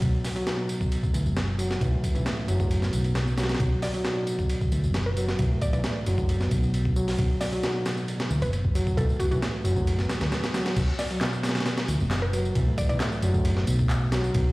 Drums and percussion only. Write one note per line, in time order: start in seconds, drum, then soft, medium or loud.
0.02 kick loud
0.02 ride medium
0.02 tambourine soft
0.25 snare soft
0.25 open hi-hat medium
0.25 tambourine medium
0.36 ride soft
0.36 tambourine soft
0.47 snare loud
0.47 ride medium
0.47 tambourine soft
0.69 ride medium
0.69 tambourine medium
0.81 kick medium
0.81 tambourine soft
0.92 ride medium
0.92 tambourine soft
1.03 kick medium
1.03 tambourine soft
1.14 ride medium
1.14 tambourine medium
1.26 tambourine soft
1.36 snare loud
1.36 ride medium
1.36 tambourine soft
1.59 ride medium
1.59 tambourine medium
1.71 snare medium
1.71 tambourine soft
1.81 kick loud
1.81 ride medium
1.81 tambourine soft
2.04 kick medium
2.04 ride medium
2.04 tambourine medium
2.15 ride soft
2.15 tambourine soft
2.26 snare loud
2.26 ride medium
2.26 tambourine soft
2.48 ride medium
2.48 tambourine medium
2.60 kick medium
2.60 tambourine soft
2.71 ride medium
2.71 tambourine soft
2.82 snare soft
2.82 tambourine soft
2.93 ride medium
2.93 tambourine medium
3.04 ride soft
3.04 tambourine soft
3.15 snare loud
3.15 ride medium
3.15 tambourine soft
3.27 tambourine soft
3.38 snare medium
3.38 ride medium
3.38 tambourine medium
3.43 snare medium
3.43 ride medium
3.49 snare medium
3.49 ride medium
3.49 tambourine soft
3.55 snare medium
3.55 ride medium
3.60 kick loud
3.60 ride medium
3.60 tambourine soft
3.82 snare soft
3.82 open hi-hat medium
3.82 tambourine medium
3.94 ride soft
3.94 tambourine soft
4.05 snare loud
4.05 ride medium
4.05 tambourine soft
4.27 ride medium
4.27 tambourine medium
4.39 kick medium
4.39 tambourine soft
4.49 ride medium
4.49 tambourine soft
4.61 kick medium
4.61 tambourine soft
4.72 ride medium
4.72 tambourine medium
4.83 tambourine soft
4.94 snare loud
4.94 ride medium
4.94 tambourine soft
5.17 ride medium
5.17 tambourine medium
5.28 snare medium
5.28 tambourine soft
5.39 kick loud
5.39 ride medium
5.39 tambourine soft
5.62 kick loud
5.62 ride medium
5.62 tambourine medium
5.73 ride soft
5.73 tambourine soft
5.84 snare loud
5.84 ride medium
5.84 tambourine soft
6.06 ride medium
6.06 tambourine medium
6.18 kick medium
6.18 tambourine soft
6.29 ride medium
6.29 tambourine soft
6.41 snare soft
6.41 tambourine soft
6.51 kick loud
6.51 ride medium
6.51 tambourine medium
6.63 tambourine soft
6.74 ride medium
6.74 tambourine soft
6.85 kick medium
6.96 tambourine medium
7.08 snare soft
7.08 open hi-hat medium
7.08 tambourine soft
7.18 kick loud
7.18 ride medium
7.18 tambourine soft
7.41 snare soft
7.41 open hi-hat medium
7.41 tambourine medium
7.52 ride soft
7.52 tambourine soft
7.63 snare loud
7.63 ride medium
7.63 tambourine soft
7.86 snare loud
7.86 ride medium
7.86 tambourine medium
7.97 tambourine soft
8.08 ride medium
8.08 tambourine soft
8.20 snare loud
8.20 ride medium
8.30 tambourine medium
8.42 ride medium
8.42 tambourine soft
8.53 ride medium
8.53 tambourine soft
8.64 kick medium
8.75 ride medium
8.75 tambourine medium
8.87 kick medium
8.87 tambourine soft
8.98 kick loud
8.98 ride medium
8.98 tambourine soft
9.09 tambourine soft
9.20 kick medium
9.20 ride medium
9.20 tambourine medium
9.32 ride soft
9.32 tambourine soft
9.42 snare loud
9.42 ride medium
9.42 tambourine soft
9.65 ride medium
9.65 tambourine medium
9.76 kick medium
9.76 tambourine soft
9.87 ride medium
9.87 tambourine soft
9.99 snare soft
9.99 tambourine soft
10.09 snare loud
10.09 ride medium
10.09 tambourine medium
10.21 snare loud
10.21 ride medium
10.21 tambourine soft
10.32 snare loud
10.32 ride medium
10.32 tambourine soft
10.44 snare loud
10.44 ride medium
10.44 tambourine soft
10.54 snare loud
10.54 ride medium
10.54 tambourine medium
10.66 snare loud
10.66 ride medium
10.76 kick loud
10.76 crash medium
10.76 ride medium
10.76 tambourine soft
10.99 snare soft
10.99 open hi-hat medium
10.99 tambourine medium
11.11 ride soft
11.11 tambourine soft
11.21 snare loud
11.21 clap loud
11.21 ride medium
11.21 tambourine soft
11.33 tambourine soft
11.43 snare medium
11.43 ride medium
11.43 tambourine medium
11.49 snare medium
11.49 ride medium
11.55 snare medium
11.55 ride medium
11.55 tambourine soft
11.60 snare medium
11.60 ride medium
11.66 snare loud
11.66 ride medium
11.66 tambourine soft
11.78 snare loud
11.78 ride medium
11.88 ride medium
11.88 tambourine medium
12.00 tambourine soft
12.11 snare loud
12.11 clap loud
12.11 ride medium
12.11 tambourine soft
12.33 ride medium
12.33 tambourine medium
12.45 tambourine soft
12.55 kick loud
12.55 ride medium
12.55 tambourine soft
12.78 kick medium
12.78 ride medium
12.78 tambourine medium
12.90 ride soft
12.90 tambourine soft
13.00 snare loud
13.00 clap loud
13.00 ride medium
13.00 tambourine soft
13.12 tambourine soft
13.22 ride medium
13.22 tambourine medium
13.34 kick loud
13.34 tambourine soft
13.45 ride medium
13.45 tambourine soft
13.57 snare soft
13.67 ride medium
13.67 tambourine medium
13.79 kick medium
13.79 tambourine soft
13.90 clap loud
13.90 ride medium
13.90 tambourine soft
14.12 snare loud
14.12 ride medium
14.12 tambourine medium
14.24 tambourine soft
14.34 kick loud
14.34 ride medium
14.34 tambourine soft